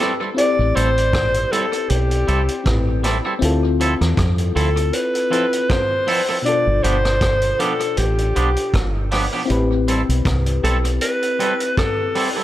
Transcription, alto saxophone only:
Already playing: A4
0.38 D5
0.76 C5
1.52 A4
1.90 G4
4.56 A4
4.93 B4
5.69 C5
6.46 D5
6.83 C5
7.60 A4
7.98 G4
10.64 A4
11.02 B4
11.78 A4

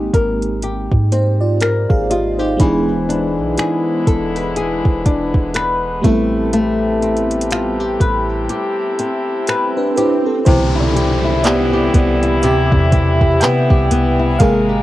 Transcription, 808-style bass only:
0.14 G#1
0.92 G#2
1.90 G#1
2.60 E1
3.38 B1
4.07 E1
4.85 E1
5.06 E1
5.34 E1
6.04 A1
8.00 A1
10.47 C2
11.94 C2
12.43 D2
12.72 E2
13.42 C3
13.70 C2
13.91 C2
14.40 G#1

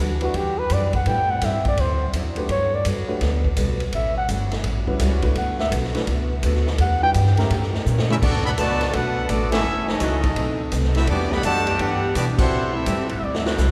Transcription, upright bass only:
0.00 D2
0.34 E2
0.70 F#2
1.06 A2
1.42 G2
1.78 D2
2.13 E2
2.49 G2
2.85 F#2
3.09 muted upright bass stroke
3.21 D2
3.57 B1
3.93 A1
4.29 G1
4.64 A1
5.00 C#2
5.36 D2
5.72 B1
6.08 C#2
6.43 D2
6.79 E2
7.15 G2
7.51 A2
7.86 A#2
8.22 D2
8.58 C#2
8.94 B1
9.29 A1
9.64 F#1
10.01 C#2
10.36 B1
10.72 C2
11.08 E2
11.44 F#2
11.79 G2
12.15 B2
12.51 A2
12.87 E2
12.98 C2
13.10 A1
13.22 D2
13.58 C2

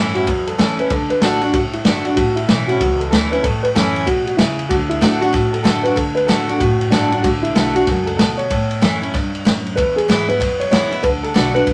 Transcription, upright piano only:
Already playing: E4
0.14 F#4
0.47 A4
0.58 A4
0.79 B4
0.91 A4
1.10 B4
1.21 A4
1.53 F#4
1.73 E4
1.85 D4
2.16 F#4
2.36 E4
2.67 F#4
2.80 F#4
2.99 A4
3.10 A4
3.31 B4
3.43 A4
3.63 B4
3.75 A4
4.06 F#4
4.26 F#4
4.37 E4
4.69 F#4
4.89 E4
5.21 F#4
5.53 A4
5.63 A4
5.83 B4
5.95 A4
6.15 B4
6.27 A4
6.53 A4
6.58 F#4
6.90 D4
7.22 F#4
7.42 E4
7.75 F#4
8.06 A4
8.17 A4
8.37 C#5
9.76 B4
9.96 G#4
10.28 B4
10.60 C#5
10.71 C#5
11.03 B4
11.23 A4
11.54 B4

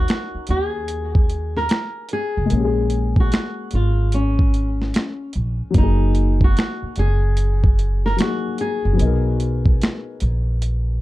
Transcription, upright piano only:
Already playing: F#3 C#4 D#4 A#4
2.46 G#3 A#3
2.53 C#4
2.57 G4
2.64 G#4
5.70 F#3
5.74 A#3 D#4
5.82 G#4
8.16 F#3 A#3
8.21 D#4 G#4
8.93 F#3 B3
9.01 D#4
9.05 A#4

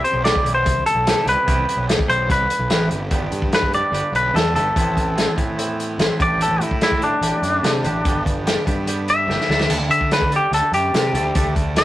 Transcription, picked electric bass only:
0.13 B1
0.44 B1
0.66 C2
0.95 B1
1.26 C2
1.47 C2
1.77 B1
2.09 B1
2.30 C2
2.59 B1
2.70 A1
2.91 G1
3.11 G1
3.21 G1
3.32 G2
3.92 G1
4.12 B1
4.34 E2
4.54 G1
4.76 A1
5.37 A2
5.98 A1
6.20 A1
6.50 A1
6.60 A2
7.21 A1
7.42 F#2
7.63 C3
7.84 A1
8.05 G1
8.67 G2
9.28 G1
9.49 D2
9.70 D2
9.79 D2
9.89 D3
10.51 D2
10.72 F#2
10.93 C3
11.13 D2
11.35 D2

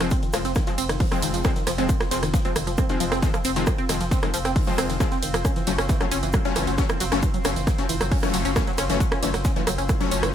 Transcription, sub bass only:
0.00 F1
0.34 F1
0.45 F1
0.78 F1
0.89 F1
1.23 F1
1.34 F1
1.67 F1
1.78 F1
2.12 F1
2.23 F1
2.56 F1
2.67 F1
3.00 F1
3.12 F1
3.45 F1
3.56 F1
3.89 F1
4.00 F1
4.34 F1
4.45 F1
4.78 F1
4.89 F1
5.23 F1
5.34 F1
5.67 F#1
5.78 F#1
6.11 F#1
6.23 F#1
6.56 F#1
6.67 F#1
7.00 F#1
7.12 F#1
7.45 F#1
7.56 F#1
7.89 F#1
8.01 F#1
8.34 F#1
8.45 F#1
8.78 F#1
8.89 F#1
9.23 F#1
9.34 F#1
9.67 F#1
9.78 F#1
10.11 F#1
10.23 F#1

